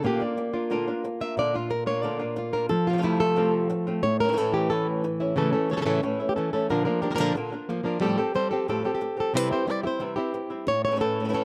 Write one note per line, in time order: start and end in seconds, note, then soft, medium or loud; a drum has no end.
0.03 0.19 A#2 medium
0.03 0.20 D3 medium
0.03 0.19 A#3 medium
0.03 1.36 A#3 medium
0.03 0.19 D4 medium
0.03 0.18 F4 medium
0.03 0.53 F4 soft
0.03 0.22 G4 medium
0.20 0.36 A#3 soft
0.20 0.36 D4 soft
0.20 0.36 F4 soft
0.20 1.21 D5 soft
0.37 muted nylon-string guitar stroke medium
0.53 0.70 A#3 soft
0.53 0.70 D4 soft
0.53 0.70 F4 soft
0.53 1.56 F4 medium
0.70 0.86 A#2 medium
0.70 0.87 D3 medium
0.70 0.87 A#3 medium
0.70 0.87 D4 medium
0.70 0.86 F4 medium
0.70 1.36 A#4 soft
0.87 1.04 A#3 soft
0.87 1.04 D4 soft
0.87 1.03 F4 soft
1.04 muted nylon-string guitar stroke medium
1.20 1.37 A#3 soft
1.20 1.37 D4 soft
1.20 1.37 F4 soft
1.20 1.38 E5 loud
1.37 2.68 A#2 medium
1.37 1.53 A#2 medium
1.37 1.53 D3 medium
1.37 1.54 A#3 medium
1.37 1.54 D4 medium
1.37 1.53 F4 medium
1.37 1.55 D5 medium
1.54 1.69 A#3 soft
1.54 1.70 D4 soft
1.54 1.70 F4 soft
1.54 1.72 F4 medium
1.70 1.87 A#4 medium
1.70 muted nylon-string guitar stroke medium
1.86 2.68 A#3 medium
1.86 2.02 A#3 soft
1.86 2.03 D4 soft
1.86 2.03 F4 soft
1.86 2.03 C#5 loud
2.03 2.19 A#2 medium
2.03 2.20 D3 medium
2.03 2.20 A#3 medium
2.03 2.19 D4 medium
2.03 2.18 F4 medium
2.03 2.53 D5 loud
2.19 2.35 A#3 soft
2.19 2.35 D4 soft
2.19 2.36 F4 medium
2.36 2.69 F4 medium
2.36 muted nylon-string guitar stroke medium
2.53 2.70 A#3 soft
2.53 2.70 D4 soft
2.53 2.69 F4 soft
2.53 2.69 A#4 loud
2.69 4.02 F3 medium
2.69 2.87 A4 medium
2.69 muted nylon-string guitar stroke medium
2.87 2.92 C3 soft
2.87 2.92 F3 soft
2.87 2.92 A3 soft
2.87 2.93 C4 medium
2.87 3.04 F4 medium
2.87 2.93 F4 medium
2.93 2.97 C3 medium
2.93 2.97 F3 medium
2.93 2.97 A3 soft
2.93 2.97 C4 medium
2.93 2.98 F4 medium
2.98 3.01 C3 medium
2.98 3.02 F3 medium
2.98 3.02 A3 medium
2.98 3.02 C4 medium
2.98 3.02 F4 medium
3.02 3.35 F2 medium
3.02 3.35 C3 medium
3.02 3.35 F3 medium
3.02 3.36 A3 medium
3.02 3.36 C4 medium
3.02 3.21 E4 loud
3.02 3.36 F4 medium
3.20 4.23 A3 medium
3.20 3.53 A4 loud
3.36 3.68 F2 medium
3.36 3.68 C3 medium
3.36 3.69 F3 medium
3.36 3.69 A3 medium
3.36 3.69 C4 medium
3.36 4.02 C4 soft
3.36 3.69 F4 medium
3.70 muted nylon-string guitar stroke medium
3.87 4.04 F3 soft
3.87 4.03 A3 soft
3.87 4.03 C4 medium
3.87 4.03 F4 medium
4.03 5.34 A2 medium
4.03 4.20 C#5 loud
4.03 muted nylon-string guitar stroke medium
4.20 4.26 E3 medium
4.20 4.27 A3 soft
4.20 4.28 C#4 medium
4.20 4.38 A#4 loud
4.25 4.31 E3 medium
4.25 4.32 A3 medium
4.25 4.28 E4 soft
4.29 4.36 E3 medium
4.29 4.36 A3 medium
4.29 4.32 C#4 medium
4.29 4.32 E4 medium
4.33 4.69 A2 medium
4.33 4.36 C#4 medium
4.33 4.37 E4 medium
4.37 4.69 E3 medium
4.37 4.70 A3 medium
4.37 4.70 C#4 medium
4.37 4.70 E4 medium
4.37 4.54 A4 medium
4.52 5.36 E3 medium
4.52 4.70 G4 loud
4.70 5.03 A2 medium
4.70 5.03 E3 medium
4.70 5.03 A3 medium
4.70 5.03 C#4 medium
4.70 5.03 E4 medium
4.70 4.86 A4 medium
5.04 muted nylon-string guitar stroke medium
5.20 5.36 A3 soft
5.20 5.36 C#4 soft
5.20 5.36 E4 medium
5.20 5.34 E4 medium
5.36 5.52 A2 medium
5.36 5.52 C#3 medium
5.36 5.52 E3 medium
5.36 5.53 A3 medium
5.36 5.52 C#4 medium
5.36 5.51 E4 medium
5.36 5.51 A4 medium
5.53 5.69 E3 soft
5.53 5.69 A3 soft
5.53 5.68 A3 soft
5.53 5.69 C#4 medium
5.53 5.69 C#4 soft
5.53 5.69 E4 soft
5.53 5.69 A4 medium
5.69 5.75 C#3 soft
5.69 5.74 E3 soft
5.69 5.73 A3 soft
5.69 6.05 C#5 medium
5.69 muted nylon-string guitar stroke medium
5.73 5.79 C#3 medium
5.73 5.80 E3 medium
5.73 5.81 A3 medium
5.73 5.76 A4 medium
5.77 5.85 C#3 medium
5.77 5.81 C#4 medium
5.77 5.81 A4 medium
5.82 6.02 A2 medium
5.82 5.84 E3 medium
5.82 5.85 A3 medium
5.82 5.85 C#4 medium
5.82 5.85 A4 medium
5.86 6.01 C#3 medium
5.86 6.02 E3 medium
5.86 6.02 A3 medium
5.86 6.02 A3 soft
5.86 6.02 C#4 medium
5.86 6.03 C#4 soft
5.86 6.02 E4 soft
5.86 6.02 A4 medium
6.02 6.19 A2 medium
6.02 6.19 E3 medium
6.02 6.19 A3 medium
6.02 6.19 C#4 medium
6.02 6.18 E4 medium
6.02 muted nylon-string guitar stroke medium
6.20 6.36 A3 soft
6.20 6.36 C#4 soft
6.20 6.35 E4 soft
6.29 6.36 G4 medium
6.36 6.52 E3 soft
6.36 6.53 A3 soft
6.36 6.52 C#4 soft
6.36 6.52 A4 medium
6.36 muted nylon-string guitar stroke medium
6.53 6.69 E3 medium
6.53 6.69 A3 medium
6.53 6.70 A3 soft
6.53 6.69 C#4 soft
6.53 6.70 C#4 medium
6.53 6.69 E4 soft
6.53 6.68 A4 medium
6.69 6.85 A#2 medium
6.69 6.86 A#2 medium
6.69 6.85 D3 medium
6.69 6.86 D3 medium
6.69 6.86 F3 medium
6.69 6.86 A#3 medium
6.69 6.85 D4 medium
6.69 6.84 F4 medium
6.69 6.84 A#4 medium
6.85 7.02 F3 medium
6.85 7.02 A#3 soft
6.85 7.02 A#3 medium
6.85 7.02 D4 medium
6.85 7.02 D4 soft
6.85 7.01 F4 soft
6.85 7.01 A#4 medium
7.02 7.09 F3 soft
7.02 7.10 A#3 soft
7.02 7.10 D4 soft
7.02 7.18 G4 medium
7.02 7.11 A#4 medium
7.02 muted nylon-string guitar stroke soft
7.11 7.13 D3 soft
7.11 7.13 F3 medium
7.11 7.14 A#3 medium
7.11 7.15 D4 medium
7.11 7.14 A#4 medium
7.15 7.18 D3 medium
7.15 7.18 F3 medium
7.15 7.19 A#3 medium
7.15 7.19 D4 medium
7.15 7.36 A4 medium
7.15 7.20 A#4 medium
7.19 7.33 A#2 medium
7.19 7.34 D3 medium
7.19 7.34 F3 medium
7.19 7.34 A#3 medium
7.19 7.35 A#3 soft
7.19 7.35 D4 medium
7.19 7.36 D4 soft
7.19 7.36 F4 soft
7.19 7.34 A#4 loud
7.35 7.52 A#2 medium
7.35 7.52 D3 medium
7.35 7.52 A#3 medium
7.35 7.52 D4 medium
7.35 7.51 F4 medium
7.35 muted nylon-string guitar stroke medium
7.52 7.69 A#3 soft
7.52 7.69 D4 soft
7.52 7.68 F4 soft
7.69 7.82 F3 soft
7.69 7.83 A#3 soft
7.69 muted nylon-string guitar stroke medium
7.83 7.99 F3 medium
7.83 8.01 A#3 medium
7.83 8.02 A#3 soft
7.83 8.01 D4 medium
7.83 8.02 D4 soft
7.83 8.01 F4 soft
7.83 8.02 A#4 medium
8.00 8.18 F2 medium
8.00 8.18 A2 medium
8.00 8.17 F3 medium
8.00 8.18 F3 medium
8.00 8.17 G3 medium
8.00 8.18 G3 medium
8.00 8.17 C4 medium
8.00 8.18 C4 medium
8.00 8.17 G4 medium
8.00 8.17 A4 medium
8.18 8.34 F3 soft
8.18 8.34 G3 soft
8.18 8.34 C4 soft
8.18 8.34 G4 soft
8.18 8.34 A4 medium
8.34 8.51 G3 medium
8.34 8.51 C4 medium
8.34 8.52 G4 medium
8.34 8.50 A4 medium
8.34 8.50 C5 medium
8.34 muted nylon-string guitar stroke medium
8.51 8.67 F3 soft
8.51 8.68 G3 soft
8.51 8.68 C4 soft
8.51 8.67 G4 soft
8.51 8.68 G4 soft
8.51 8.67 A4 medium
8.68 8.84 F2 medium
8.68 8.84 A2 medium
8.68 8.84 F3 medium
8.68 8.84 G3 medium
8.68 8.84 C4 medium
8.68 8.83 G4 medium
8.68 8.84 A4 medium
8.68 muted nylon-string guitar stroke medium
8.84 9.00 F3 soft
8.84 9.01 G3 soft
8.84 9.00 C4 soft
8.84 9.34 C4 soft
8.84 9.00 G4 soft
8.84 8.93 G4 medium
8.84 9.19 A4 medium
8.95 9.17 G4 medium
9.01 muted nylon-string guitar stroke medium
9.17 9.34 F3 soft
9.17 9.34 G3 soft
9.17 9.34 C4 soft
9.17 9.33 G4 soft
9.17 9.35 A4 medium
9.34 9.50 C3 medium
9.34 9.51 E3 medium
9.34 9.50 G3 medium
9.34 9.51 G3 medium
9.34 9.50 C4 medium
9.34 9.51 C4 medium
9.34 9.51 E4 medium
9.34 9.49 E4 medium
9.34 9.52 B4 medium
9.50 9.66 G3 soft
9.50 9.67 C4 soft
9.50 9.67 C4 medium
9.50 9.67 E4 soft
9.50 9.67 E4 medium
9.50 9.67 G4 medium
9.50 9.67 C5 medium
9.67 9.83 G3 medium
9.67 9.84 C4 medium
9.67 9.83 E4 medium
9.67 9.71 G4 medium
9.67 muted nylon-string guitar stroke medium
9.71 9.83 D5 medium
9.83 9.99 G3 soft
9.83 9.99 C4 soft
9.83 10.00 E4 soft
9.83 9.99 E4 soft
9.83 9.87 G4 medium
9.83 10.03 C5 medium
10.00 10.16 C3 medium
10.00 10.17 E3 medium
10.00 10.16 G3 medium
10.00 10.16 C4 medium
10.00 10.15 E4 medium
10.00 muted nylon-string guitar stroke medium
10.16 10.33 G3 soft
10.16 10.33 C4 soft
10.16 10.67 C4 soft
10.16 10.33 E4 soft
10.16 10.67 E4 soft
10.16 10.66 G4 medium
10.34 muted nylon-string guitar stroke soft
10.50 10.67 G3 soft
10.50 10.67 C4 soft
10.50 10.66 E4 soft
10.67 11.44 A2 medium
10.67 10.83 C#5 loud
10.67 muted nylon-string guitar stroke medium
10.85 10.90 E3 soft
10.85 10.90 A3 soft
10.85 10.91 C#4 soft
10.85 10.91 E4 soft
10.85 11.01 C#5 medium
10.91 10.94 E3 soft
10.91 10.95 A3 soft
10.91 10.95 C#4 medium
10.91 10.96 E4 medium
10.95 11.00 E3 medium
10.95 11.00 A3 soft
10.95 11.00 C#4 medium
10.95 11.00 E4 medium
11.00 11.32 A2 medium
11.00 11.19 E3 medium
11.00 11.19 A3 medium
11.00 11.19 C#4 medium
11.00 11.20 E4 medium
11.00 11.33 A4 medium
11.20 11.23 E3 soft
11.20 11.24 A3 soft
11.20 11.24 C#4 soft
11.20 11.24 E4 soft
11.24 11.27 E3 soft
11.24 11.28 A3 soft
11.24 11.28 C#4 medium
11.24 11.29 E4 medium
11.29 11.32 E3 medium
11.29 11.33 A3 medium
11.29 11.33 C#4 medium
11.29 11.33 E4 medium
11.33 11.44 A2 medium
11.33 11.44 E3 medium
11.33 11.44 A3 medium
11.33 11.44 C#4 medium
11.33 11.44 E4 medium
11.33 11.44 A4 medium